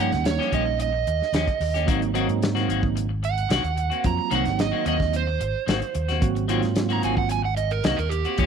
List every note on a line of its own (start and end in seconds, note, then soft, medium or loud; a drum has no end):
0.00 0.14 G2 medium
0.00 0.11 F3 medium
0.00 0.89 G3 medium
0.00 0.12 A#3 medium
0.00 0.89 A#3 medium
0.00 0.11 C#4 medium
0.00 0.89 C#4 medium
0.00 0.90 D#4 medium
0.00 0.10 G4 medium
0.00 0.25 F#5 medium
0.12 0.38 D#2 medium
0.12 muted clean electric guitar stroke soft
0.12 snare soft
0.12 closed hi-hat soft
0.25 0.52 C#5 medium
0.25 snare loud
0.25 closed hi-hat medium
0.39 0.49 F3 soft
0.39 0.50 A#3 medium
0.39 0.52 C#4 medium
0.39 0.52 G4 medium
0.39 snare soft
0.51 1.03 A#1 medium
0.51 0.65 F3 medium
0.51 0.65 A#3 medium
0.51 0.65 C#4 medium
0.51 0.64 G4 medium
0.51 0.79 D#5 medium
0.51 kick medium
0.51 closed hi-hat medium
0.65 muted clean electric guitar stroke soft
0.79 1.86 D#5 loud
0.79 muted clean electric guitar stroke soft
0.79 closed hi-hat medium
0.93 muted clean electric guitar stroke soft
1.07 1.20 D#2 medium
1.07 muted clean electric guitar stroke soft
1.07 closed hi-hat medium
1.22 snare soft
1.33 1.46 D#2 medium
1.33 1.47 F3 medium
1.33 1.48 A#3 medium
1.33 1.47 C#4 medium
1.33 1.46 G4 medium
1.33 snare loud
1.33 closed hi-hat medium
1.47 muted clean electric guitar stroke soft
1.47 kick medium
1.47 closed hi-hat soft
1.60 1.86 D#2 medium
1.60 muted clean electric guitar stroke soft
1.60 open hi-hat medium
1.74 1.87 A#3 soft
1.74 1.88 C#4 soft
1.74 1.88 G4 medium
1.74 snare soft
1.74 closed hi-hat soft
1.86 2.26 G#1 loud
1.86 2.01 D#3 medium
1.86 2.10 F#3 medium
1.86 2.10 A#3 medium
1.86 2.01 A#3 medium
1.86 2.10 C4 medium
1.86 2.01 C4 medium
1.86 2.10 D#4 medium
1.86 2.00 F#4 medium
1.86 kick loud
1.86 closed hi-hat medium
2.01 muted clean electric guitar stroke soft
2.01 closed hi-hat soft
2.14 2.28 D#3 medium
2.14 3.05 F#3 medium
2.14 3.05 A#3 medium
2.14 2.28 A#3 medium
2.14 3.06 C4 medium
2.14 2.28 C4 medium
2.14 3.06 D#4 loud
2.14 2.27 F#4 medium
2.14 closed hi-hat medium
2.28 2.67 G#2 medium
2.28 muted clean electric guitar stroke soft
2.28 closed hi-hat soft
2.43 snare loud
2.43 closed hi-hat medium
2.55 2.67 D#3 medium
2.55 2.68 A#3 medium
2.55 2.69 C4 medium
2.55 2.69 F#4 medium
2.55 snare soft
2.55 closed hi-hat soft
2.68 3.46 G#1 medium
2.68 2.83 D#3 medium
2.68 2.83 A#3 medium
2.68 2.83 C4 medium
2.68 2.82 F#4 medium
2.68 closed hi-hat medium
2.83 muted clean electric guitar stroke soft
2.83 kick medium
2.96 muted clean electric guitar stroke soft
2.96 closed hi-hat medium
3.09 muted clean electric guitar stroke soft
3.23 4.03 F#5 medium
3.23 muted clean electric guitar stroke soft
3.23 closed hi-hat medium
3.38 closed hi-hat soft
3.49 3.63 C2 medium
3.49 3.64 D#3 medium
3.49 3.64 A#3 medium
3.49 3.64 C4 medium
3.49 3.63 F#4 medium
3.49 snare loud
3.49 closed hi-hat medium
3.64 3.90 D#2 medium
3.64 muted clean electric guitar stroke soft
3.64 closed hi-hat soft
3.76 muted clean electric guitar stroke soft
3.76 closed hi-hat medium
3.90 4.08 A#3 soft
3.90 4.07 C4 medium
3.90 4.07 F#4 medium
3.90 muted fingered electric bass stroke soft
3.90 closed hi-hat soft
4.04 4.18 F2 loud
4.04 4.27 F#3 medium
4.04 4.27 A#3 medium
4.04 4.27 C4 medium
4.04 4.28 F4 medium
4.04 4.32 A#5 loud
4.04 kick loud
4.04 closed hi-hat medium
4.17 muted clean electric guitar stroke soft
4.30 4.46 C2 medium
4.30 4.45 D#3 medium
4.30 5.23 F#3 medium
4.30 4.44 A#3 medium
4.30 5.23 A#3 medium
4.30 4.44 C4 medium
4.30 5.23 C4 medium
4.30 5.23 D#4 medium
4.30 4.43 F#4 medium
4.30 closed hi-hat medium
4.35 4.60 F#5 medium
4.45 4.71 G#1 medium
4.45 muted clean electric guitar stroke soft
4.45 snare soft
4.45 closed hi-hat soft
4.59 4.86 D#5 medium
4.59 snare loud
4.59 closed hi-hat medium
4.72 4.84 D#3 medium
4.72 4.85 A#3 medium
4.72 4.86 C4 medium
4.72 4.85 F#4 medium
4.85 5.37 D#2 medium
4.85 4.99 D#3 medium
4.85 4.99 A#3 medium
4.85 4.98 C4 medium
4.85 4.98 F#4 medium
4.85 5.14 D#5 medium
4.85 closed hi-hat medium
4.99 muted clean electric guitar stroke soft
4.99 kick medium
4.99 snare soft
5.13 6.20 C5 loud
5.13 muted clean electric guitar stroke soft
5.13 closed hi-hat medium
5.27 muted clean electric guitar stroke soft
5.40 5.53 G#1 medium
5.40 muted clean electric guitar stroke soft
5.40 closed hi-hat medium
5.66 5.80 G#1 medium
5.66 5.81 D#3 medium
5.66 5.81 A#3 medium
5.66 5.80 C4 medium
5.66 5.79 F#4 medium
5.66 snare loud
5.66 closed hi-hat medium
5.80 muted clean electric guitar stroke soft
5.80 closed hi-hat soft
5.95 6.21 D#2 medium
5.95 muted clean electric guitar stroke soft
5.95 closed hi-hat medium
6.08 6.26 A#3 soft
6.08 6.25 C4 medium
6.08 6.25 F#4 medium
6.08 snare soft
6.08 closed hi-hat soft
6.20 6.61 G#1 loud
6.20 6.44 F#3 medium
6.20 6.44 A#3 medium
6.20 6.44 C4 medium
6.20 6.45 F#4 loud
6.20 kick loud
6.20 closed hi-hat medium
6.35 muted clean electric guitar stroke soft
6.35 closed hi-hat soft
6.48 6.62 D#3 medium
6.48 7.39 F#3 medium
6.48 7.40 A#3 medium
6.48 6.63 A#3 medium
6.48 7.40 C4 medium
6.48 6.62 C4 loud
6.48 7.40 F4 loud
6.48 6.61 F#4 medium
6.48 closed hi-hat medium
6.62 7.01 G#2 medium
6.62 muted clean electric guitar stroke soft
6.62 snare soft
6.62 closed hi-hat soft
6.76 snare loud
6.76 closed hi-hat medium
6.89 7.01 D#3 medium
6.89 7.02 A#3 medium
6.89 7.03 C4 medium
6.89 7.03 F#4 medium
6.89 7.04 A#5 loud
6.89 closed hi-hat soft
7.02 7.80 G#1 medium
7.02 7.17 D#3 medium
7.02 7.16 A#3 medium
7.02 7.15 C4 medium
7.02 7.15 F#4 medium
7.02 7.18 G#5 medium
7.02 closed hi-hat medium
7.16 7.30 F#5 medium
7.16 muted clean electric guitar stroke soft
7.16 kick medium
7.29 7.44 G#5 loud
7.29 muted clean electric guitar stroke soft
7.29 closed hi-hat medium
7.43 7.57 F#5 medium
7.43 muted clean electric guitar stroke soft
7.57 7.71 D#5 medium
7.57 muted clean electric guitar stroke soft
7.57 closed hi-hat medium
7.71 7.84 A#4 loud
7.71 closed hi-hat soft
7.84 7.98 C2 loud
7.84 7.98 D#3 medium
7.84 7.99 A#3 medium
7.84 7.98 C4 medium
7.84 7.97 F#4 medium
7.84 7.98 D#5 loud
7.84 snare loud
7.84 closed hi-hat medium
7.97 8.24 D#2 medium
7.97 8.10 A#4 medium
7.97 muted clean electric guitar stroke soft
7.97 closed hi-hat soft
8.09 8.46 G4 medium
8.09 muted clean electric guitar stroke soft
8.09 closed hi-hat medium
8.25 8.38 A#3 soft
8.25 8.39 C4 medium
8.25 8.39 F#4 soft
8.25 muted fingered electric bass stroke soft
8.25 closed hi-hat soft
8.38 8.46 D#2 loud
8.38 8.46 F3 medium
8.38 8.46 G3 medium
8.38 8.46 A#3 medium
8.38 8.46 C#4 medium
8.38 8.46 F4 medium
8.38 8.46 G4 medium
8.38 kick loud
8.38 closed hi-hat medium